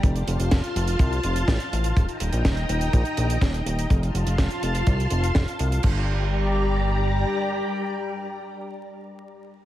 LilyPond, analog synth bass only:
\new Staff \with { instrumentName = "Analog synth bass" } { \clef bass \time 4/4 \key g \minor \tempo 4 = 124 f,,8 f,,16 f,,16 f,,16 r16 f,,8 c,8 f,,8 a,,16 r16 a,,8 | ees,,16 r16 ees,,16 bes,,16 ees,,8 ees,,8 bes,,16 r16 bes,,8 ees,,8 ees,,8 | f,,8 f,,16 f,,16 f,,16 r16 f,,8 c,8 f,,8 f,,16 r16 c,8 | g,,2. r4 |
r1 | }